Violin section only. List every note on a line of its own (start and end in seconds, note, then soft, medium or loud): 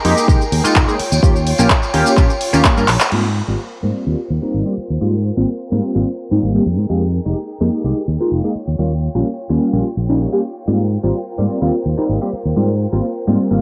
0.00 0.97 D#4 medium
0.00 0.97 G#4 medium
0.00 0.95 A#4 medium
0.00 3.08 G5 medium
0.99 3.10 F4 medium
0.99 3.10 C#5 medium
3.12 6.63 F4 medium
3.12 8.51 A#4 medium
3.12 6.63 C5 medium
3.12 13.62 G5 medium
6.66 8.53 D#4 medium
6.66 8.53 G#4 medium
8.56 13.62 F4 medium
8.56 10.66 C#5 medium
10.67 13.62 A#4 medium
10.67 13.62 C5 medium